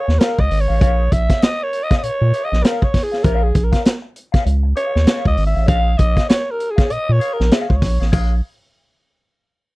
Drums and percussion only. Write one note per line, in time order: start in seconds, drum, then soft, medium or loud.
0.09 snare soft
0.20 snare loud
0.20 closed hi-hat medium
0.39 kick medium
0.51 open hi-hat medium
0.81 kick loud
0.81 closed hi-hat medium
1.12 kick medium
1.12 closed hi-hat medium
1.30 kick loud
1.30 snare soft
1.30 closed hi-hat medium
1.42 snare loud
1.42 closed hi-hat loud
1.73 closed hi-hat medium
1.91 kick loud
1.91 snare soft
1.91 closed hi-hat soft
2.03 closed hi-hat medium
2.33 closed hi-hat medium
2.53 snare soft
2.64 snare loud
2.64 closed hi-hat loud
2.82 kick loud
2.94 kick medium
2.94 snare soft
2.94 open hi-hat loud
3.13 snare soft
3.24 kick loud
3.24 closed hi-hat medium
3.55 kick loud
3.55 closed hi-hat medium
3.73 kick medium
3.73 snare soft
3.73 closed hi-hat medium
3.85 snare loud
3.85 closed hi-hat loud
4.16 closed hi-hat medium
4.34 kick loud
4.34 snare soft
4.34 closed hi-hat medium
4.46 closed hi-hat medium
4.76 closed hi-hat medium
4.96 snare soft
5.07 snare loud
5.07 closed hi-hat medium
5.25 kick medium
5.37 open hi-hat medium
5.68 kick loud
5.68 closed hi-hat medium
5.99 kick medium
5.99 closed hi-hat medium
6.17 kick medium
6.17 snare soft
6.17 closed hi-hat soft
6.29 snare loud
6.29 closed hi-hat loud
6.60 closed hi-hat medium
6.78 kick loud
6.78 snare soft
6.78 closed hi-hat medium
6.90 closed hi-hat medium
7.21 closed hi-hat medium
7.40 snare soft
7.51 snare loud
7.51 closed hi-hat medium
7.70 kick medium
7.82 kick loud
7.82 snare soft
7.82 open hi-hat loud
8.02 snare soft
8.13 kick loud
8.13 crash medium